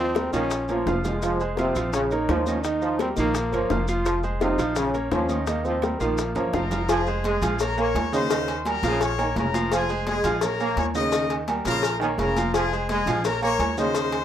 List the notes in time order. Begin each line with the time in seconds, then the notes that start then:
Already playing: D#2 C4
0.00 F3
0.15 G3 G4 A#4, high bongo, high conga, high timbale, maracas
0.33 A#1 D#3 F3 C#4 F4 F5, high conga, maracas
0.51 high bongo, high timbale, maracas
0.68 F3 A#3 A#4 C#5, high bongo, high conga, high timbale, maracas
0.86 F1 F3 F4 F5, high bongo, low bongo, high conga, high timbale, maracas
1.04 F3 G#3 F4 F5, high bongo, low conga, low timbale, maracas
1.22 F3, high bongo, high conga, high timbale, maracas
1.40 G#3 G#4 C5, high bongo, high conga, maracas
1.57 C3 F3 C4 F4 F5, high bongo, high conga, high timbale, maracas
1.75 A#1 F3 F4 F5, high bongo, high conga, low conga, high timbale, maracas
1.93 C#3 C#4, high bongo, high conga, low conga, maracas
2.11 A#3 D#4 A#4 C#5, high conga, high timbale, maracas
2.29 D#2 F3, high bongo, low bongo, high conga, high timbale, low timbale, maracas
2.46 D#3 C#4 D#4 D#5, high bongo, high conga, maracas
2.64 D#3 D#4 D#5, high bongo, high timbale, maracas
2.82 F3, high bongo, high conga, maracas
2.99 G3 C4 G4 A#4, high bongo, high conga, high timbale, maracas
3.16 A#1 D#3 F3 A#3 F4 F5, high conga, maracas
3.35 high bongo, high timbale, maracas
3.52 G1 F3 A#3 A#4 C#5, high bongo, high conga, high timbale, maracas
3.70 F1 F3 F4 F5, high bongo, low bongo, high conga, low timbale, maracas
3.88 F3 F4 F5, high bongo, high conga, high timbale, maracas
4.05 F3, high bongo, high timbale, maracas
4.23 G#3 G#4 C5, high bongo, high conga, maracas
4.41 C3 F3 D#4 F4 F5, high bongo, high conga, high timbale, maracas
4.58 A#1 F3 F4 F5, high bongo, high conga, low conga, high timbale, maracas
4.76 C#3 C#4, high bongo, high conga, low conga, maracas
4.94 A#3 A#4 C#5, high conga, high timbale, maracas
5.11 D#2 F3 C#4, high bongo, low bongo, high conga, high timbale, low timbale, maracas
5.29 D#3 D#4 D#5, high bongo, high conga, maracas
5.47 D#3 A#3 D#4 D#5, high bongo, high conga, high timbale, maracas
5.65 F3 C4, high bongo, high conga, maracas
5.82 G3 G4 A#4, high bongo, high conga, high timbale, maracas
6.00 A#1 D#3 F3 A#3 F4 F5, high conga, maracas
6.18 high bongo, high timbale, maracas
6.35 G1 F3 A#3 A#4 C#5, high bongo, low conga, high timbale, maracas
6.53 F1 F3 F4 A#4 F5 A#5, high bongo, low bongo, low conga, high timbale, maracas
6.71 F3 F4 F5, high bongo, low conga, low timbale, maracas
6.88 F3 G#4 G#5, cowbell, high conga, low agogo, maracas
7.06 G#3 G#4 C5, high conga, maracas
7.24 G#3 G#4 G#5, cowbell, high conga, low timbale, low agogo, maracas
7.41 A#1 F3 F4 F5, cowbell, high conga, low conga, low agogo, maracas
7.59 A#3 A#4 C#5 A#5, cowbell, high conga, maracas
7.77 A#3 A#4 C#5 C#6, high conga, low agogo, maracas
7.95 D#2, cowbell, high conga, low timbale, low agogo, maracas
8.12 C#3 D#3 D#4 C5 D#5 C6, high conga, maracas
8.30 D#3 D#4 D#5, cowbell, low agogo, maracas
8.48 cowbell, high conga, low agogo, maracas
8.65 G3 G4 A#4 A#5, cowbell, high conga, low timbale, low agogo, maracas
8.83 A#1 C#3 F3 F4 F5, cowbell, high conga, maracas
9.01 C#5 C#6, cowbell, high conga, low agogo, maracas
9.18 D#3 A#3 A#4 C#5, high conga, low agogo, maracas
9.35 F1 C#3 A#4 A#5, cowbell, high conga, low timbale, maracas
9.54 F3 F4 F5, cowbell, high conga, low agogo, maracas
9.71 F3 G#4 G#5, cowbell, high conga, low agogo, maracas
9.89 G#3 G#4 C5, high conga, maracas
10.07 G#3 G#4 G#5, cowbell, high conga, low timbale, low agogo, maracas
10.24 A#1 F3 F4 F5, cowbell, high conga, low conga, low agogo, maracas
10.41 A#3 A#4 C#5 A#5, cowbell, high conga, low conga, maracas
10.60 A#3 A#4 C#5, high conga, low agogo, maracas
10.76 D#2 C#5 C#6, cowbell, high conga, low timbale, low agogo, maracas
10.95 C#3 D#3 D#4 D#5 D#6, high conga, maracas
11.12 D#3 D#4 D#5, cowbell, low agogo, maracas
11.30 cowbell, high conga, low agogo, maracas
11.48 G3 G4 A#4, cowbell, high conga, low timbale, low agogo, maracas
11.65 A#1 C#3 F3 F4 A#4 F5 A#5, cowbell, high conga, maracas
11.83 cowbell, low agogo, maracas
12.00 D#3 A#3 A#4 C#5, high conga, low agogo, maracas
12.18 F1 C#3 A#4 A#5, cowbell, high conga, low timbale, maracas
12.36 F3 F4 F5, cowbell, high conga, low agogo, maracas
12.54 F3 G#4 G#5, cowbell, high conga, low agogo, maracas
12.71 G#3 G#4 C5, high conga, maracas
12.89 G#3 G#4 G#5, cowbell, high conga, low timbale, low agogo, maracas
13.06 A#1 F3 F4 F5, cowbell, high conga, low conga, low agogo, maracas
13.24 A#3 A#4 C#5 A#5, cowbell, high conga, low conga, maracas
13.42 A#3 A#4 C#5 C#6, high conga, low agogo, maracas
13.59 D#2, cowbell, high conga, low timbale, low agogo, maracas
13.77 C#3 D#3 D#4 C5 D#5 C6, high conga, maracas
13.95 D#3 D#4 D#5, cowbell, high conga, low agogo, maracas
14.12 cowbell, high conga, low agogo, maracas